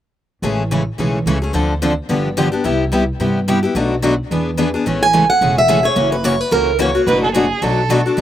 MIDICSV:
0, 0, Header, 1, 6, 480
1, 0, Start_track
1, 0, Key_signature, 3, "major"
1, 0, Tempo, 276370
1, 756, Time_signature, 4, 2, 24, 8
1, 14259, End_track
2, 0, Start_track
2, 0, Title_t, "Steel-string acoustic guitar"
2, 0, Program_c, 0, 25
2, 8730, Note_on_c, 0, 80, 88
2, 9193, Note_off_c, 0, 80, 0
2, 9200, Note_on_c, 0, 78, 89
2, 9641, Note_off_c, 0, 78, 0
2, 9698, Note_on_c, 0, 76, 88
2, 10165, Note_on_c, 0, 73, 72
2, 10177, Note_off_c, 0, 76, 0
2, 10603, Note_off_c, 0, 73, 0
2, 10633, Note_on_c, 0, 71, 68
2, 10855, Note_off_c, 0, 71, 0
2, 10855, Note_on_c, 0, 73, 74
2, 11126, Note_off_c, 0, 73, 0
2, 11126, Note_on_c, 0, 71, 70
2, 11329, Note_on_c, 0, 70, 75
2, 11331, Note_off_c, 0, 71, 0
2, 11768, Note_off_c, 0, 70, 0
2, 11841, Note_on_c, 0, 73, 66
2, 12169, Note_off_c, 0, 73, 0
2, 14259, End_track
3, 0, Start_track
3, 0, Title_t, "Violin"
3, 0, Program_c, 1, 40
3, 12282, Note_on_c, 1, 71, 93
3, 12531, Note_off_c, 1, 71, 0
3, 12563, Note_on_c, 1, 69, 81
3, 12748, Note_off_c, 1, 69, 0
3, 12760, Note_on_c, 1, 68, 82
3, 13242, Note_on_c, 1, 69, 86
3, 13268, Note_off_c, 1, 68, 0
3, 14196, Note_off_c, 1, 69, 0
3, 14259, End_track
4, 0, Start_track
4, 0, Title_t, "Steel-string acoustic guitar"
4, 0, Program_c, 2, 25
4, 763, Note_on_c, 2, 56, 58
4, 771, Note_on_c, 2, 64, 62
4, 776, Note_on_c, 2, 69, 54
4, 1081, Note_off_c, 2, 56, 0
4, 1085, Note_off_c, 2, 64, 0
4, 1087, Note_off_c, 2, 69, 0
4, 1248, Note_on_c, 2, 56, 61
4, 1259, Note_on_c, 2, 64, 75
4, 1264, Note_on_c, 2, 69, 73
4, 1420, Note_off_c, 2, 56, 0
4, 1426, Note_off_c, 2, 64, 0
4, 1428, Note_off_c, 2, 69, 0
4, 1728, Note_on_c, 2, 56, 61
4, 1732, Note_on_c, 2, 64, 64
4, 1736, Note_on_c, 2, 69, 69
4, 2044, Note_off_c, 2, 56, 0
4, 2046, Note_off_c, 2, 64, 0
4, 2048, Note_off_c, 2, 69, 0
4, 2203, Note_on_c, 2, 56, 69
4, 2215, Note_on_c, 2, 64, 74
4, 2223, Note_on_c, 2, 69, 85
4, 2378, Note_off_c, 2, 56, 0
4, 2384, Note_off_c, 2, 64, 0
4, 2388, Note_off_c, 2, 69, 0
4, 6537, Note_on_c, 2, 71, 53
4, 6849, Note_off_c, 2, 71, 0
4, 7018, Note_on_c, 2, 71, 77
4, 7187, Note_off_c, 2, 71, 0
4, 7504, Note_on_c, 2, 71, 65
4, 7813, Note_off_c, 2, 71, 0
4, 7979, Note_on_c, 2, 71, 80
4, 8147, Note_off_c, 2, 71, 0
4, 8448, Note_on_c, 2, 56, 49
4, 8451, Note_on_c, 2, 64, 57
4, 8456, Note_on_c, 2, 69, 52
4, 8764, Note_off_c, 2, 56, 0
4, 8766, Note_off_c, 2, 64, 0
4, 8768, Note_off_c, 2, 69, 0
4, 8921, Note_on_c, 2, 56, 67
4, 8932, Note_on_c, 2, 64, 73
4, 8939, Note_on_c, 2, 69, 72
4, 9097, Note_off_c, 2, 56, 0
4, 9103, Note_off_c, 2, 64, 0
4, 9106, Note_off_c, 2, 69, 0
4, 9407, Note_on_c, 2, 56, 65
4, 9412, Note_on_c, 2, 64, 71
4, 9415, Note_on_c, 2, 69, 72
4, 9723, Note_off_c, 2, 56, 0
4, 9726, Note_off_c, 2, 64, 0
4, 9727, Note_off_c, 2, 69, 0
4, 9884, Note_on_c, 2, 56, 75
4, 9893, Note_on_c, 2, 64, 87
4, 9897, Note_on_c, 2, 69, 86
4, 10058, Note_off_c, 2, 56, 0
4, 10063, Note_off_c, 2, 64, 0
4, 10065, Note_off_c, 2, 69, 0
4, 10345, Note_on_c, 2, 54, 57
4, 10360, Note_on_c, 2, 64, 52
4, 10371, Note_on_c, 2, 70, 62
4, 10671, Note_off_c, 2, 54, 0
4, 10679, Note_off_c, 2, 64, 0
4, 10684, Note_off_c, 2, 70, 0
4, 10828, Note_on_c, 2, 54, 72
4, 10844, Note_on_c, 2, 64, 70
4, 10848, Note_on_c, 2, 70, 90
4, 11010, Note_off_c, 2, 54, 0
4, 11018, Note_off_c, 2, 64, 0
4, 11019, Note_off_c, 2, 70, 0
4, 11309, Note_on_c, 2, 54, 59
4, 11330, Note_on_c, 2, 64, 68
4, 11334, Note_on_c, 2, 70, 58
4, 11633, Note_off_c, 2, 54, 0
4, 11643, Note_off_c, 2, 64, 0
4, 11645, Note_off_c, 2, 70, 0
4, 11790, Note_on_c, 2, 54, 86
4, 11798, Note_on_c, 2, 64, 76
4, 11809, Note_on_c, 2, 70, 87
4, 11970, Note_off_c, 2, 54, 0
4, 11974, Note_off_c, 2, 64, 0
4, 11979, Note_off_c, 2, 70, 0
4, 12297, Note_on_c, 2, 71, 58
4, 12606, Note_off_c, 2, 71, 0
4, 12766, Note_on_c, 2, 71, 82
4, 12937, Note_off_c, 2, 71, 0
4, 13253, Note_on_c, 2, 71, 61
4, 13563, Note_off_c, 2, 71, 0
4, 13724, Note_on_c, 2, 71, 93
4, 13896, Note_off_c, 2, 71, 0
4, 14203, Note_on_c, 2, 62, 55
4, 14259, Note_off_c, 2, 62, 0
4, 14259, End_track
5, 0, Start_track
5, 0, Title_t, "Steel-string acoustic guitar"
5, 0, Program_c, 3, 25
5, 742, Note_on_c, 3, 49, 53
5, 748, Note_on_c, 3, 52, 58
5, 755, Note_on_c, 3, 57, 63
5, 756, Note_on_c, 3, 61, 55
5, 769, Note_on_c, 3, 68, 62
5, 1070, Note_off_c, 3, 49, 0
5, 1073, Note_off_c, 3, 52, 0
5, 1077, Note_off_c, 3, 57, 0
5, 1077, Note_off_c, 3, 61, 0
5, 1084, Note_off_c, 3, 68, 0
5, 1234, Note_on_c, 3, 49, 65
5, 1238, Note_on_c, 3, 52, 67
5, 1240, Note_on_c, 3, 57, 66
5, 1252, Note_on_c, 3, 68, 75
5, 1254, Note_on_c, 3, 61, 72
5, 1414, Note_off_c, 3, 49, 0
5, 1415, Note_off_c, 3, 52, 0
5, 1416, Note_off_c, 3, 57, 0
5, 1422, Note_off_c, 3, 68, 0
5, 1423, Note_off_c, 3, 61, 0
5, 1704, Note_on_c, 3, 49, 50
5, 1713, Note_on_c, 3, 52, 50
5, 1723, Note_on_c, 3, 57, 53
5, 1729, Note_on_c, 3, 61, 52
5, 1736, Note_on_c, 3, 68, 53
5, 2032, Note_off_c, 3, 49, 0
5, 2036, Note_off_c, 3, 52, 0
5, 2041, Note_off_c, 3, 57, 0
5, 2044, Note_off_c, 3, 61, 0
5, 2048, Note_off_c, 3, 68, 0
5, 2205, Note_on_c, 3, 49, 76
5, 2208, Note_on_c, 3, 52, 79
5, 2212, Note_on_c, 3, 57, 75
5, 2216, Note_on_c, 3, 61, 74
5, 2224, Note_on_c, 3, 68, 72
5, 2379, Note_off_c, 3, 49, 0
5, 2381, Note_off_c, 3, 52, 0
5, 2383, Note_off_c, 3, 57, 0
5, 2385, Note_off_c, 3, 61, 0
5, 2389, Note_off_c, 3, 68, 0
5, 2463, Note_on_c, 3, 68, 50
5, 2488, Note_on_c, 3, 61, 48
5, 2496, Note_on_c, 3, 57, 41
5, 2660, Note_on_c, 3, 50, 60
5, 2665, Note_off_c, 3, 57, 0
5, 2666, Note_off_c, 3, 68, 0
5, 2671, Note_on_c, 3, 53, 64
5, 2672, Note_on_c, 3, 60, 61
5, 2677, Note_off_c, 3, 61, 0
5, 2684, Note_on_c, 3, 62, 62
5, 2690, Note_on_c, 3, 69, 64
5, 2990, Note_off_c, 3, 50, 0
5, 2996, Note_off_c, 3, 53, 0
5, 2996, Note_off_c, 3, 60, 0
5, 3002, Note_off_c, 3, 62, 0
5, 3006, Note_off_c, 3, 69, 0
5, 3159, Note_on_c, 3, 50, 75
5, 3164, Note_on_c, 3, 53, 72
5, 3171, Note_on_c, 3, 60, 72
5, 3171, Note_on_c, 3, 62, 69
5, 3180, Note_on_c, 3, 69, 80
5, 3337, Note_off_c, 3, 50, 0
5, 3339, Note_off_c, 3, 53, 0
5, 3343, Note_off_c, 3, 60, 0
5, 3343, Note_off_c, 3, 62, 0
5, 3347, Note_off_c, 3, 69, 0
5, 3627, Note_on_c, 3, 50, 48
5, 3636, Note_on_c, 3, 53, 50
5, 3638, Note_on_c, 3, 59, 61
5, 3645, Note_on_c, 3, 62, 61
5, 3649, Note_on_c, 3, 67, 59
5, 3954, Note_off_c, 3, 50, 0
5, 3959, Note_off_c, 3, 53, 0
5, 3960, Note_off_c, 3, 59, 0
5, 3963, Note_off_c, 3, 62, 0
5, 3965, Note_off_c, 3, 67, 0
5, 4115, Note_on_c, 3, 53, 77
5, 4116, Note_on_c, 3, 50, 73
5, 4126, Note_on_c, 3, 59, 83
5, 4126, Note_on_c, 3, 62, 80
5, 4132, Note_on_c, 3, 67, 86
5, 4295, Note_off_c, 3, 50, 0
5, 4295, Note_off_c, 3, 53, 0
5, 4300, Note_off_c, 3, 59, 0
5, 4300, Note_off_c, 3, 62, 0
5, 4304, Note_off_c, 3, 67, 0
5, 4372, Note_on_c, 3, 67, 50
5, 4393, Note_on_c, 3, 62, 48
5, 4407, Note_on_c, 3, 59, 47
5, 4578, Note_off_c, 3, 59, 0
5, 4582, Note_off_c, 3, 67, 0
5, 4585, Note_on_c, 3, 48, 54
5, 4590, Note_on_c, 3, 55, 50
5, 4592, Note_off_c, 3, 62, 0
5, 4599, Note_on_c, 3, 59, 58
5, 4607, Note_on_c, 3, 64, 72
5, 4612, Note_on_c, 3, 67, 58
5, 4913, Note_off_c, 3, 48, 0
5, 4916, Note_off_c, 3, 55, 0
5, 4920, Note_off_c, 3, 59, 0
5, 4924, Note_off_c, 3, 64, 0
5, 4927, Note_off_c, 3, 67, 0
5, 5066, Note_on_c, 3, 48, 74
5, 5077, Note_on_c, 3, 55, 67
5, 5083, Note_on_c, 3, 59, 72
5, 5087, Note_on_c, 3, 64, 71
5, 5096, Note_on_c, 3, 67, 78
5, 5251, Note_off_c, 3, 48, 0
5, 5256, Note_off_c, 3, 55, 0
5, 5259, Note_off_c, 3, 59, 0
5, 5261, Note_off_c, 3, 64, 0
5, 5266, Note_off_c, 3, 67, 0
5, 5554, Note_on_c, 3, 55, 62
5, 5555, Note_on_c, 3, 48, 51
5, 5566, Note_on_c, 3, 59, 47
5, 5569, Note_on_c, 3, 64, 60
5, 5577, Note_on_c, 3, 67, 51
5, 5878, Note_off_c, 3, 48, 0
5, 5878, Note_off_c, 3, 55, 0
5, 5884, Note_off_c, 3, 59, 0
5, 5886, Note_off_c, 3, 64, 0
5, 5889, Note_off_c, 3, 67, 0
5, 6041, Note_on_c, 3, 48, 71
5, 6046, Note_on_c, 3, 55, 80
5, 6048, Note_on_c, 3, 59, 82
5, 6058, Note_on_c, 3, 64, 77
5, 6060, Note_on_c, 3, 67, 83
5, 6218, Note_off_c, 3, 48, 0
5, 6221, Note_off_c, 3, 55, 0
5, 6222, Note_off_c, 3, 59, 0
5, 6227, Note_off_c, 3, 64, 0
5, 6228, Note_off_c, 3, 67, 0
5, 6300, Note_on_c, 3, 67, 53
5, 6320, Note_on_c, 3, 64, 49
5, 6340, Note_on_c, 3, 59, 44
5, 6506, Note_off_c, 3, 67, 0
5, 6512, Note_on_c, 3, 47, 61
5, 6516, Note_off_c, 3, 64, 0
5, 6523, Note_off_c, 3, 59, 0
5, 6525, Note_on_c, 3, 54, 58
5, 6530, Note_on_c, 3, 57, 62
5, 6535, Note_on_c, 3, 62, 67
5, 6537, Note_on_c, 3, 66, 67
5, 6837, Note_off_c, 3, 47, 0
5, 6843, Note_off_c, 3, 54, 0
5, 6846, Note_off_c, 3, 57, 0
5, 6848, Note_off_c, 3, 62, 0
5, 6849, Note_off_c, 3, 66, 0
5, 6989, Note_on_c, 3, 47, 80
5, 6994, Note_on_c, 3, 54, 71
5, 6998, Note_on_c, 3, 57, 66
5, 7006, Note_on_c, 3, 62, 77
5, 7013, Note_on_c, 3, 66, 88
5, 7172, Note_off_c, 3, 47, 0
5, 7175, Note_off_c, 3, 54, 0
5, 7177, Note_off_c, 3, 57, 0
5, 7181, Note_off_c, 3, 62, 0
5, 7184, Note_off_c, 3, 66, 0
5, 7490, Note_on_c, 3, 52, 49
5, 7497, Note_on_c, 3, 59, 51
5, 7502, Note_on_c, 3, 68, 53
5, 7503, Note_on_c, 3, 62, 55
5, 7805, Note_off_c, 3, 52, 0
5, 7809, Note_off_c, 3, 59, 0
5, 7812, Note_off_c, 3, 62, 0
5, 7812, Note_off_c, 3, 68, 0
5, 7945, Note_on_c, 3, 52, 73
5, 7952, Note_on_c, 3, 59, 74
5, 7955, Note_on_c, 3, 62, 80
5, 7962, Note_on_c, 3, 68, 83
5, 8130, Note_off_c, 3, 52, 0
5, 8133, Note_off_c, 3, 59, 0
5, 8135, Note_off_c, 3, 62, 0
5, 8138, Note_off_c, 3, 68, 0
5, 8230, Note_on_c, 3, 68, 48
5, 8248, Note_on_c, 3, 62, 45
5, 8268, Note_on_c, 3, 59, 40
5, 8430, Note_off_c, 3, 68, 0
5, 8439, Note_off_c, 3, 62, 0
5, 8440, Note_on_c, 3, 49, 54
5, 8443, Note_on_c, 3, 52, 66
5, 8446, Note_off_c, 3, 59, 0
5, 8452, Note_on_c, 3, 57, 63
5, 8454, Note_on_c, 3, 61, 62
5, 8465, Note_on_c, 3, 68, 62
5, 8760, Note_off_c, 3, 49, 0
5, 8761, Note_off_c, 3, 52, 0
5, 8766, Note_off_c, 3, 57, 0
5, 8767, Note_off_c, 3, 61, 0
5, 8772, Note_off_c, 3, 68, 0
5, 8913, Note_on_c, 3, 49, 70
5, 8918, Note_on_c, 3, 52, 71
5, 8924, Note_on_c, 3, 57, 70
5, 8925, Note_on_c, 3, 61, 77
5, 8936, Note_on_c, 3, 68, 69
5, 9094, Note_off_c, 3, 49, 0
5, 9096, Note_off_c, 3, 52, 0
5, 9099, Note_off_c, 3, 57, 0
5, 9099, Note_off_c, 3, 61, 0
5, 9105, Note_off_c, 3, 68, 0
5, 9401, Note_on_c, 3, 49, 49
5, 9405, Note_on_c, 3, 52, 55
5, 9412, Note_on_c, 3, 57, 49
5, 9421, Note_on_c, 3, 61, 53
5, 9422, Note_on_c, 3, 68, 61
5, 9720, Note_off_c, 3, 49, 0
5, 9722, Note_off_c, 3, 52, 0
5, 9725, Note_off_c, 3, 57, 0
5, 9730, Note_off_c, 3, 61, 0
5, 9730, Note_off_c, 3, 68, 0
5, 9868, Note_on_c, 3, 49, 76
5, 9873, Note_on_c, 3, 52, 78
5, 9880, Note_on_c, 3, 57, 75
5, 9886, Note_on_c, 3, 61, 88
5, 9888, Note_on_c, 3, 68, 82
5, 10050, Note_off_c, 3, 49, 0
5, 10052, Note_off_c, 3, 52, 0
5, 10056, Note_off_c, 3, 57, 0
5, 10059, Note_off_c, 3, 61, 0
5, 10060, Note_off_c, 3, 68, 0
5, 10125, Note_on_c, 3, 68, 48
5, 10146, Note_on_c, 3, 61, 46
5, 10159, Note_on_c, 3, 57, 40
5, 10336, Note_off_c, 3, 68, 0
5, 10340, Note_off_c, 3, 61, 0
5, 10346, Note_off_c, 3, 57, 0
5, 10347, Note_on_c, 3, 49, 53
5, 10353, Note_on_c, 3, 58, 63
5, 10354, Note_on_c, 3, 52, 53
5, 10361, Note_on_c, 3, 61, 66
5, 10365, Note_on_c, 3, 66, 61
5, 10672, Note_off_c, 3, 49, 0
5, 10675, Note_off_c, 3, 58, 0
5, 10676, Note_off_c, 3, 52, 0
5, 10679, Note_off_c, 3, 61, 0
5, 10681, Note_off_c, 3, 66, 0
5, 10838, Note_on_c, 3, 52, 78
5, 10839, Note_on_c, 3, 49, 67
5, 10843, Note_on_c, 3, 58, 72
5, 10854, Note_on_c, 3, 66, 84
5, 10855, Note_on_c, 3, 61, 79
5, 11015, Note_off_c, 3, 49, 0
5, 11015, Note_off_c, 3, 52, 0
5, 11017, Note_off_c, 3, 58, 0
5, 11023, Note_off_c, 3, 61, 0
5, 11023, Note_off_c, 3, 66, 0
5, 11309, Note_on_c, 3, 49, 59
5, 11311, Note_on_c, 3, 52, 51
5, 11321, Note_on_c, 3, 58, 57
5, 11329, Note_on_c, 3, 61, 56
5, 11331, Note_on_c, 3, 66, 59
5, 11633, Note_off_c, 3, 49, 0
5, 11633, Note_off_c, 3, 52, 0
5, 11638, Note_off_c, 3, 58, 0
5, 11643, Note_off_c, 3, 61, 0
5, 11644, Note_off_c, 3, 66, 0
5, 11787, Note_on_c, 3, 49, 76
5, 11794, Note_on_c, 3, 52, 74
5, 11803, Note_on_c, 3, 58, 84
5, 11808, Note_on_c, 3, 61, 78
5, 11812, Note_on_c, 3, 66, 87
5, 11968, Note_off_c, 3, 49, 0
5, 11972, Note_off_c, 3, 52, 0
5, 11976, Note_off_c, 3, 58, 0
5, 11979, Note_off_c, 3, 61, 0
5, 11981, Note_off_c, 3, 66, 0
5, 12067, Note_on_c, 3, 66, 55
5, 12081, Note_on_c, 3, 61, 48
5, 12107, Note_on_c, 3, 58, 44
5, 12266, Note_off_c, 3, 66, 0
5, 12273, Note_off_c, 3, 61, 0
5, 12285, Note_on_c, 3, 47, 65
5, 12286, Note_off_c, 3, 58, 0
5, 12294, Note_on_c, 3, 57, 61
5, 12295, Note_on_c, 3, 54, 65
5, 12304, Note_on_c, 3, 66, 70
5, 12306, Note_on_c, 3, 62, 62
5, 12600, Note_off_c, 3, 47, 0
5, 12605, Note_off_c, 3, 54, 0
5, 12605, Note_off_c, 3, 57, 0
5, 12610, Note_off_c, 3, 62, 0
5, 12610, Note_off_c, 3, 66, 0
5, 12756, Note_on_c, 3, 47, 78
5, 12759, Note_on_c, 3, 54, 78
5, 12772, Note_on_c, 3, 57, 79
5, 12776, Note_on_c, 3, 66, 90
5, 12779, Note_on_c, 3, 62, 77
5, 12932, Note_off_c, 3, 47, 0
5, 12934, Note_off_c, 3, 54, 0
5, 12940, Note_off_c, 3, 57, 0
5, 12942, Note_off_c, 3, 66, 0
5, 12944, Note_off_c, 3, 62, 0
5, 13232, Note_on_c, 3, 54, 54
5, 13233, Note_on_c, 3, 47, 57
5, 13240, Note_on_c, 3, 57, 57
5, 13251, Note_on_c, 3, 62, 64
5, 13254, Note_on_c, 3, 66, 59
5, 13553, Note_off_c, 3, 47, 0
5, 13553, Note_off_c, 3, 54, 0
5, 13557, Note_off_c, 3, 57, 0
5, 13562, Note_off_c, 3, 62, 0
5, 13564, Note_off_c, 3, 66, 0
5, 13719, Note_on_c, 3, 54, 84
5, 13721, Note_on_c, 3, 47, 79
5, 13727, Note_on_c, 3, 62, 82
5, 13732, Note_on_c, 3, 57, 85
5, 13740, Note_on_c, 3, 66, 80
5, 13893, Note_off_c, 3, 54, 0
5, 13894, Note_off_c, 3, 47, 0
5, 13897, Note_off_c, 3, 62, 0
5, 13899, Note_off_c, 3, 57, 0
5, 13903, Note_off_c, 3, 66, 0
5, 13993, Note_on_c, 3, 66, 51
5, 14011, Note_on_c, 3, 62, 48
5, 14032, Note_on_c, 3, 57, 42
5, 14187, Note_off_c, 3, 66, 0
5, 14188, Note_off_c, 3, 62, 0
5, 14188, Note_on_c, 3, 52, 62
5, 14197, Note_off_c, 3, 57, 0
5, 14204, Note_on_c, 3, 59, 52
5, 14259, Note_off_c, 3, 52, 0
5, 14259, Note_off_c, 3, 59, 0
5, 14259, End_track
6, 0, Start_track
6, 0, Title_t, "Upright bass"
6, 0, Program_c, 4, 32
6, 735, Note_on_c, 4, 33, 69
6, 1512, Note_off_c, 4, 33, 0
6, 1708, Note_on_c, 4, 35, 56
6, 2120, Note_off_c, 4, 35, 0
6, 2184, Note_on_c, 4, 37, 70
6, 2598, Note_off_c, 4, 37, 0
6, 2672, Note_on_c, 4, 38, 70
6, 3443, Note_off_c, 4, 38, 0
6, 3630, Note_on_c, 4, 31, 70
6, 4402, Note_off_c, 4, 31, 0
6, 4594, Note_on_c, 4, 36, 73
6, 5364, Note_off_c, 4, 36, 0
6, 5552, Note_on_c, 4, 43, 62
6, 6323, Note_off_c, 4, 43, 0
6, 6508, Note_on_c, 4, 35, 69
6, 7280, Note_off_c, 4, 35, 0
6, 7483, Note_on_c, 4, 40, 72
6, 8249, Note_off_c, 4, 40, 0
6, 8438, Note_on_c, 4, 33, 67
6, 9205, Note_off_c, 4, 33, 0
6, 9396, Note_on_c, 4, 28, 65
6, 10164, Note_off_c, 4, 28, 0
6, 10351, Note_on_c, 4, 30, 76
6, 11120, Note_off_c, 4, 30, 0
6, 11314, Note_on_c, 4, 37, 68
6, 12082, Note_off_c, 4, 37, 0
6, 12269, Note_on_c, 4, 30, 78
6, 13038, Note_off_c, 4, 30, 0
6, 13230, Note_on_c, 4, 35, 62
6, 13998, Note_off_c, 4, 35, 0
6, 14202, Note_on_c, 4, 28, 78
6, 14259, Note_off_c, 4, 28, 0
6, 14259, End_track
0, 0, End_of_file